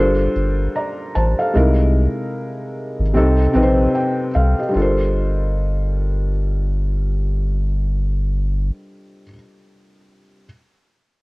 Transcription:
Already playing: sub bass G1, felt piano G3 D4 F4 A4 A#4 C5
0.36 sub bass G1
0.76 felt piano D5 A#5
1.15 sub bass A1, felt piano C5 A5
1.39 felt piano A4 F5
1.53 sub bass C2, felt piano C3 G#3 D#4 E4 A#4
2.99 sub bass G#1
3.14 sub bass C2, felt piano C3 C4 D#4 G4 A4
3.53 sub bass A#1, felt piano C3 C4 D#4 G4 B4
3.63 felt piano C5
3.95 felt piano G5
4.35 sub bass C2, felt piano A4 F5
4.59 felt piano G4 D#5
4.68 felt piano G3 D4
4.74 sub bass G1, felt piano F4 A4
4.79 felt piano A#4 C5

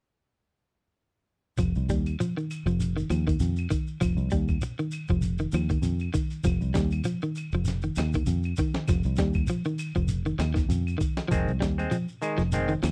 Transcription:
1.57 fingered electric bass F1, clean electric guitar F3, kick, closed hi-hat, claves, shekere
1.75 fingered electric bass C2, shekere
1.89 fingered electric bass D#2, clean electric guitar G3, kick, closed hi-hat, shekere
2.06 closed hi-hat, claves, shekere
2.20 clean electric guitar F3, closed hi-hat, shekere
2.37 clean electric guitar D#3, shekere
2.51 closed hi-hat, claves, shekere
2.66 fingered electric bass F1, clean electric guitar F3, shekere
2.80 closed hi-hat, shekere
2.97 clean electric guitar D#3, shekere
3.10 fingered electric bass D#2, clean electric guitar F3, closed hi-hat, claves, shekere
3.27 clean electric guitar D#3, kick, closed hi-hat, shekere
3.40 fingered electric bass F2, closed hi-hat, shekere
3.56 claves, shekere
3.70 clean electric guitar D#3, kick, closed hi-hat, shekere
3.87 shekere
4.01 fingered electric bass F1, clean electric guitar F3, kick, closed hi-hat, claves, shekere
4.17 fingered electric bass C2, shekere
4.31 fingered electric bass D#2, clean electric guitar G3, kick, closed hi-hat, shekere
4.48 kick, claves, shekere
4.61 muted clean electric guitar stroke, closed hi-hat, shekere
4.79 clean electric guitar D#3, shekere
4.91 closed hi-hat, claves, shekere
5.08 fingered electric bass F1, clean electric guitar F3, kick, shekere
5.22 closed hi-hat, shekere
5.38 clean electric guitar D#3, shekere
5.52 fingered electric bass D#2, clean electric guitar F3, closed hi-hat, claves, shekere
5.69 clean electric guitar D#3, kick, closed hi-hat, shekere
5.82 fingered electric bass F2, closed hi-hat, shekere
5.99 claves, shekere
6.14 clean electric guitar D#3, kick, closed hi-hat, shekere
6.30 closed hi-hat, shekere
6.44 fingered electric bass F1, clean electric guitar F3, kick, closed hi-hat, claves, shekere
6.61 fingered electric bass C2, shekere
6.74 fingered electric bass D#2, clean electric guitar G3, kick, snare, closed hi-hat, shekere
6.91 closed hi-hat, claves, shekere
7.04 clean electric guitar F3, closed hi-hat, shekere
7.22 clean electric guitar D#3, shekere
7.35 closed hi-hat, claves, shekere
7.52 fingered electric bass F1, clean electric guitar F3, shekere
7.65 snare, closed hi-hat, shekere
7.82 clean electric guitar D#3, shekere
7.96 fingered electric bass D#2, muted clean electric guitar stroke, snare, closed hi-hat, claves, shekere
8.13 clean electric guitar D#3, kick, closed hi-hat, shekere
8.26 fingered electric bass F2, closed hi-hat, shekere
8.43 claves, shekere
8.56 clean electric guitar D#3, kick, closed hi-hat, shekere
8.74 snare, shekere
8.88 fingered electric bass F1, clean electric guitar F3, kick, snare, closed hi-hat, claves, shekere
9.03 fingered electric bass C2, shekere
9.16 fingered electric bass D#2, clean electric guitar G3, kick, snare, closed hi-hat, shekere
9.33 kick, claves, shekere
9.47 clean electric guitar F3, closed hi-hat, shekere
9.65 clean electric guitar D#3, shekere
9.78 closed hi-hat, claves, shekere
9.95 fingered electric bass F1, clean electric guitar F3, kick, shekere
10.08 closed hi-hat, shekere
10.25 clean electric guitar D#3, shekere
10.39 fingered electric bass D#2, muted clean electric guitar stroke, snare, closed hi-hat, claves, shekere
10.54 clean electric guitar D#3, kick, snare, closed hi-hat, shekere
10.69 fingered electric bass F2, closed hi-hat, shekere
10.87 claves, shekere
10.98 clean electric guitar D#3, kick, closed hi-hat, shekere
11.17 snare, closed hi-hat, shekere
11.28 fingered electric bass F1, clean electric guitar D#3 F3 G#3 C4, kick, closed hi-hat, claves, shekere
11.48 fingered electric bass C2, shekere
11.61 fingered electric bass D#2, clean electric guitar G3, kick, snare, closed hi-hat, shekere
11.78 clean electric guitar G#3 C4, closed hi-hat, claves, shekere
11.91 clean electric guitar F3, closed hi-hat, shekere
12.08 shekere
12.22 clean electric guitar D#3 G#3, muted clean electric guitar stroke, closed hi-hat, claves, shekere
12.38 fingered electric bass F1, clean electric guitar F3, snare, shekere
12.52 clean electric guitar D#3 G#3 C4, closed hi-hat, shekere
12.68 clean electric guitar D#3, shekere
12.83 fingered electric bass D#2, clean electric guitar F3, snare, closed hi-hat, claves, shekere

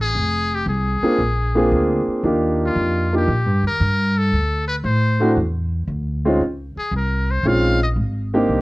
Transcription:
Already playing: upright bass A1
0.01 muted trumpet G#4
0.15 upright bass F1
0.55 muted trumpet G4
0.66 upright bass C2, muted trumpet G#4
1.02 grand piano A#3 C4 D4 F4 G#4, muted upright bass stroke
1.19 upright bass A#1
1.55 grand piano A#3 C4 D4 F4 G#4
1.72 upright bass D2
2.07 muted upright bass stroke
2.23 upright bass D#2, grand piano A#3 D4 D#4 F4 G4
2.65 muted trumpet F4
2.75 upright bass F2
3.12 grand piano A#3 D4 D#4 F4 G4, muted trumpet G4
3.27 upright bass A#2
3.45 upright bass G2
3.62 upright bass D#2
3.67 muted trumpet A#4
3.80 upright bass G2
4.18 muted trumpet A4
4.32 upright bass D2
4.68 muted trumpet B4
4.84 upright bass A2, muted trumpet C5
5.20 grand piano A3 C4 D4 E4 F#4
5.37 upright bass E2
5.88 upright bass D2
6.25 grand piano G#3 C4 C#4 D#4 F4
6.40 upright bass C#2
6.76 muted trumpet G#4, muted upright bass stroke
6.91 upright bass C2
6.97 muted trumpet A#4
7.31 muted trumpet C5
7.44 upright bass A#1, grand piano G#3 C4 C#4 D#4 F4
7.48 muted trumpet F5
7.83 muted trumpet D#5
7.96 upright bass G#1
8.34 grand piano A#3 C4 D4 D#4 G4
8.49 upright bass C2

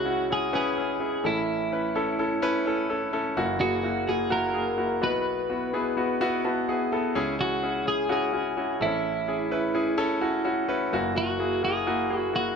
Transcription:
Already playing: grand piano C#2 C#3 C#4 E4 G#4, clean electric guitar F#4
0.05 grand piano C#4 E4 F#4
0.30 grand piano C#4 E4 F#4, clean electric guitar G#4
0.53 grand piano C#4 E4 B4, clean electric guitar G#4
0.77 grand piano C#4 E4 G#4
1.00 grand piano C#4 E4 G#4
1.24 grand piano A1 A2 C#4 E4 A4, clean electric guitar E4
1.72 grand piano C#4 E4 B4
1.95 grand piano C#4 E4 A4
2.19 grand piano C#4 E4 A4
2.42 grand piano C#4 E4 B4
2.66 grand piano C#4 E4 A4
2.89 grand piano C#4 E4 A4
3.13 grand piano C#4 E4 A4
3.37 grand piano F#1 F#2 A#3 E4 F#4
3.60 grand piano A#3 E4 G#4, clean electric guitar F#4
3.83 grand piano A#3 E4 F#4
4.08 grand piano A#3 E4 F#4, clean electric guitar G#4
4.30 grand piano A#3 E4 F#4, clean electric guitar A#4
4.54 grand piano A#3 E4 G#4
4.78 grand piano A#3 E4 F#4
5.01 grand piano B1 B2 B3 E4 F#4, clean electric guitar B4
5.50 grand piano B3 E4 F#4
5.73 grand piano B3 E4 G#4
5.97 grand piano B3 E4 F#4
6.21 grand piano B3 E4 F#4
6.45 grand piano B3 E4 F#4 A5
6.68 grand piano B3 E4 G#4 F#5
6.92 grand piano B3 E4 A4 E5
7.15 grand piano C#2 C#3 C#4 E4 G#4
7.39 grand piano C#4 E4 G#4, clean electric guitar F#4
7.63 grand piano C#4 E4 G#4
7.85 grand piano C#4 E4 G#4, clean electric guitar G#4
8.09 grand piano C#4 E4 F#4, clean electric guitar G#4
8.33 grand piano C#4 E4 F#4
8.57 grand piano C#4 E4 F#4
8.80 grand piano A1 A2 C4 E4 A4, clean electric guitar E4
8.86 grand piano C#4
9.28 grand piano C#4 E4 G#4
9.51 grand piano C#4 E4 B4
9.74 grand piano C#4 E4 G#4
9.98 grand piano C#4 E4 A4
10.21 grand piano C#4 E4 F#4
10.44 grand piano C#4 E4 F#4
10.69 grand piano C#4 E4 B4
10.93 grand piano F#1 F#2 A#3 E4 F#4
11.15 grand piano A#3 E4 F#4, clean electric guitar F#4
11.39 grand piano A#3 E4 G#4
11.62 grand piano A#3 E4 F#4, clean electric guitar G#4
11.86 grand piano A#3 E4 F#4
12.10 grand piano A#3 E4 G#4
12.19 clean electric guitar F#4
12.33 grand piano A#3 E4 F#4, clean electric guitar F#4

